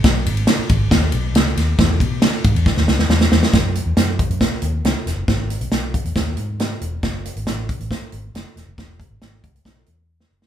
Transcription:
<<
  \new Staff \with { instrumentName = "Fingered electric bass" } { \clef bass \time 4/4 \key e \major \tempo 4 = 138 b,,8 gis,,8 r8 gis,,8 dis,8 b,,8 cis,8 dis,8 | e,8 b,8. r16 gis,16 e,16 r16 dis,16 cis,16 dis,16 e,8 e,16 r16 | fis,8. e,16 fis,8. fis,16 r8 dis,8 cis,16 r16 e,,16 fis,,16 | gis,,8. b,,16 b,,8. e,16 dis,8 gis,4 e,,8 |
fis,,8. gis,,16 a,,8. a,,16 r8 gis,,8 fis,,16 r16 e,,16 fis,,16 | e,,8. gis,,16 gis,,8 cis,8 b,,8 e,4 fis,,8 | }
  \new DrumStaff \with { instrumentName = "Drums" } \drummode { \time 4/4 <bd cymr sn>8 cymr16 cymr16 <cymr sn>8 <bd cymr>8 <bd cymr sn>8 cymr8 <cymr sn>8 <cymr sn>8 | <bd cymr sn>8 <bd cymr>8 <cymr sn>8 <bd cymr>16 cymr16 <bd sn>16 sn16 sn16 sn16 sn16 sn16 sn16 sn16 | <hh bd sn>8 hh8 <hh sn>8 <hh bd>16 hh16 <hh bd sn>8 hh8 <hh sn>8 <hh sn>8 | <hh bd sn>8 hh16 hh16 <hh sn>8 <hh bd>16 hh16 <hh bd sn>8 hh8 <hh sn>8 hh8 |
<hh bd sn>8 hh16 hh16 <hh sn>8 <hh bd>16 hh16 <hh bd sn>8 hh8 <hh sn>8 <hh sn>8 | <hh bd sn>8 <hh bd>8 <hh sn>8 <hh bd>16 hh16 <hh bd sn>8 hh8 r16 sn8 sn16 | }
>>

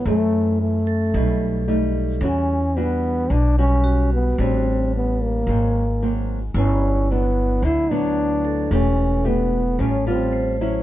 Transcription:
<<
  \new Staff \with { instrumentName = "Vibraphone" } { \time 4/4 \key e \dorian \tempo 4 = 111 r4. a'4 r4. | r2. fis'4~ | fis'8 r2. r8 | e'2 r4. a'8~ |
a'8 r2 r8 bis'4 | }
  \new Staff \with { instrumentName = "Trombone" } { \time 4/4 \key e \dorian a4 a2~ a8 r8 | cis'4 b4 d'8 cis'4 b8 | c'4 b8 bes2 r8 | cis'4 b4 e'8 d'4. |
cis'4 b4 cis'8 bis4 r8 | }
  \new Staff \with { instrumentName = "Nylon-string guitar" } { \time 4/4 \key e \dorian << { <e a c'>4. r8 <g a dis'>4 <g a dis'>4 | <g fis'>8 r8 <g d' fis'>4 r8 <g fis'>4. | <g c' d'>2 <fis ais bis>8 r8 <fis ais bis>8 r8 | <fis b>4 <fis b d'>4. <fis b d'>4. |
<a g'>4 <a d' g'>8 r8 <g cis' eis'>8 <g eis'>4 <fis cis' e'>8 | } \\ { fis,2 b,2 | e2 b,2 | a,2 gis,2 | g,2 d2 |
e2 a,2 | } >> }
  \new Staff \with { instrumentName = "Upright bass" } { \clef bass \time 4/4 \key e \dorian fis,2 b,,2 | e,2 b,,2 | a,,2 gis,,2 | g,,2 d,2 |
e,,2 a,,2 | }
>>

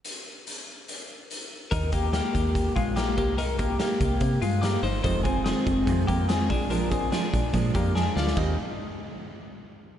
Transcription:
<<
  \new Staff \with { instrumentName = "Clean electric guitar" } { \time 4/4 \key ees \major \tempo 4 = 144 r1 | <ees' bes'>8 <bes g'>8 <bes g'>4. <aes f'>8 <bes g'>8 <bes g'>8 | <ees' bes'>8 <bes g'>8 <bes g'>4. <aes f'>8 <bes g'>8 <ees' c''>8 | <ees' c''>8 <c' aes'>8 <c' aes'>4. <bes g'>8 <c' aes'>8 <d' aes'>8 |
<d' bes'>8 <c' aes'>8 <d' aes'>4. <bes g'>8 <d' aes'>8 <f' d''>8 | ees'8 r2. r8 | }
  \new Staff \with { instrumentName = "Steel-string acoustic guitar" } { \time 4/4 \key ees \major r1 | r1 | r1 | <f, c ees aes c' f'>8 <ees aes c' f'>8 <ees aes c' f'>8 <ees aes c' f'>8 <f, c ees aes c' f'>8 <ees aes c' f'>8 <ees aes c' f'>8 <aes d' f'>8 |
<bes, f aes d' f'>8 <aes d' f'>8 <f aes d' f'>8 <aes d' f'>8 <bes, f aes d' f'>8 <aes d' f'>8 <f aes d' f'>8 <aes d' f'>8 | <ees g c' g' bes'>8 r2. r8 | }
  \new Staff \with { instrumentName = "FM bass" } { \clef bass \time 4/4 \key ees \major r1 | ees,4~ ees,16 r16 ees,4 bes,,4 c,8~ | c,4~ c,16 r16 c,8 c8 g,4 g,,8 | f,,4~ f,,16 r16 f,,8 f,8 f,4 bes,,8~ |
bes,,4~ bes,,16 r16 bes,,8 bes,8 f,4 d,8 | ees,8 r2. r8 | }
  \new DrumStaff \with { instrumentName = "Drums" } \drummode { \time 4/4 hh4 hh4 hh4 hh4 | <hh bd>8 <hh bd>8 <hh sn>8 <hh bd>8 <hh bd>8 <hh bd>8 <hh sn>8 <hh bd>8 | hh8 <hh bd>8 <hh sn>8 <hh bd>8 <hh bd>8 hh8 <hh sn>8 hho8 | <hh bd>8 <hh bd>8 <hh sn>8 <hh bd>8 <hh bd>8 <hh bd>8 <hh sn>8 <hho bd>8 |
hh8 <hh bd>8 <hh sn>8 <hh bd>8 <hh bd>8 <hh bd>8 sn8 sn16 sn16 | <cymc bd>4 r4 r4 r4 | }
>>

